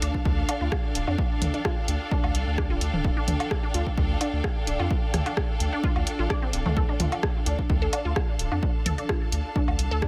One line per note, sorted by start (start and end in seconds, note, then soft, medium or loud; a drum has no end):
0.00 0.11 D2 medium
0.00 10.08 D4 medium
0.00 0.11 D4 medium
0.00 10.08 A4 medium
0.00 10.08 F5 medium
0.00 0.51 A5 medium
0.00 closed hi-hat medium
0.14 kick medium
0.25 0.43 D2 loud
0.25 kick loud
0.48 0.55 D4 medium
0.48 7.95 G5 medium
0.48 closed hi-hat medium
0.48 low woodblock medium
0.61 0.69 D2 medium
0.61 0.64 F4 medium
0.72 kick loud
0.72 cross-stick medium
0.72 low woodblock medium
0.95 1.04 D1 medium
0.95 closed hi-hat medium
1.07 1.16 F2 medium
1.07 1.15 D4 medium
1.07 low woodblock soft
1.18 kick loud
1.42 1.51 D2 medium
1.42 closed hi-hat medium
1.42 mid tom medium
1.54 1.59 D4 medium
1.54 closed hi-hat soft
1.65 1.69 F4 medium
1.65 kick loud
1.65 cross-stick medium
1.88 1.97 D2 medium
1.88 closed hi-hat medium
2.11 2.20 D4 medium
2.11 kick loud
2.24 2.32 D2 medium
2.24 low woodblock medium
2.35 2.44 C2 loud
2.35 closed hi-hat medium
2.47 2.72 D2 medium
2.58 2.64 D4 medium
2.58 kick loud
2.58 cross-stick medium
2.70 2.78 D1 loud
2.70 2.73 F4 medium
2.81 2.90 D2 loud
2.81 closed hi-hat medium
2.94 3.11 D1 medium
2.94 mid tom medium
3.04 kick loud
3.17 3.25 D4 medium
3.28 3.37 D2 loud
3.28 closed hi-hat medium
3.28 mid tom medium
3.40 closed hi-hat soft
3.40 low woodblock medium
3.51 kick loud
3.51 cross-stick medium
3.63 3.69 D4 medium
3.74 3.83 D2 medium
3.74 3.78 F4 medium
3.74 closed hi-hat medium
3.87 kick medium
3.97 4.15 D2 loud
3.97 kick loud
4.21 4.30 D4 medium
4.21 closed hi-hat medium
4.21 low woodblock soft
4.33 4.41 D2 medium
4.44 kick loud
4.44 cross-stick medium
4.44 low woodblock medium
4.67 4.76 D1 medium
4.67 4.73 D4 medium
4.67 closed hi-hat medium
4.80 4.88 F2 medium
4.80 4.83 F4 medium
4.80 low woodblock soft
4.91 kick loud
5.14 5.23 D2 loud
5.14 cross-stick medium
5.14 closed hi-hat medium
5.14 mid tom medium
5.26 5.34 D4 medium
5.26 closed hi-hat soft
5.26 low woodblock medium
5.37 kick loud
5.37 cross-stick medium
5.60 5.70 D2 medium
5.60 closed hi-hat medium
5.73 5.78 D4 medium
5.84 5.87 F4 medium
5.84 kick loud
5.84 swell medium
5.96 6.04 D2 medium
5.96 low woodblock medium
6.07 closed hi-hat medium
6.19 6.27 A1 medium
6.19 6.24 F4 medium
6.30 6.36 D5 loud
6.30 kick loud
6.30 cross-stick medium
6.42 6.48 C4 medium
6.53 6.63 D1 loud
6.53 closed hi-hat medium
6.66 6.83 D2 medium
6.66 6.69 A3 medium
6.66 mid tom medium
6.77 6.82 A4 loud
6.77 kick loud
6.89 6.94 D4 medium
7.00 7.09 D2 loud
7.00 7.03 F4 medium
7.00 closed hi-hat medium
7.00 mid tom medium
7.12 closed hi-hat soft
7.12 low woodblock medium
7.23 kick loud
7.23 cross-stick medium
7.46 7.56 D2 medium
7.46 7.55 D4 medium
7.46 closed hi-hat medium
7.59 kick medium
7.70 7.87 D2 medium
7.70 kick loud
7.82 7.87 A4 loud
7.92 7.99 D4 medium
7.92 10.08 A5 medium
7.92 closed hi-hat medium
7.92 low woodblock medium
8.05 8.13 D2 medium
8.05 8.08 F4 medium
8.16 kick loud
8.16 cross-stick medium
8.16 low woodblock medium
8.39 8.49 D1 medium
8.39 closed hi-hat medium
8.52 8.60 F2 medium
8.52 8.60 D4 medium
8.52 low woodblock soft
8.63 kick loud
8.86 8.95 D2 loud
8.86 8.92 A4 loud
8.86 closed hi-hat medium
8.86 mid tom medium
8.98 9.03 D4 medium
8.98 closed hi-hat soft
9.09 9.13 F4 medium
9.09 kick loud
9.09 cross-stick loud
9.32 9.42 D2 medium
9.32 closed hi-hat medium
9.56 9.65 D4 medium
9.56 kick loud
9.68 9.76 D2 medium
9.68 low woodblock medium
9.79 9.88 C2 loud
9.79 closed hi-hat medium
9.91 10.08 D2 medium
9.91 9.96 A4 loud
10.02 10.08 D4 medium
10.02 kick loud
10.02 cross-stick loud